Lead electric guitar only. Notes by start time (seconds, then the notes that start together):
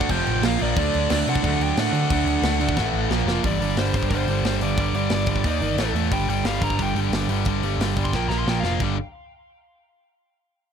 Already playing: F#5
0.10 G5
0.46 F5
0.62 D5
1.29 F#5
1.63 G5
1.80 F#5
3.46 D5
3.79 C5
3.96 C5
4.10 C5
4.62 D5
4.96 D5
6.13 G5
6.29 G5
6.47 F5
6.64 A#5
6.82 G5
8.04 C6
8.14 G5
8.28 A#5
8.39 C6
8.49 G5
8.60 F5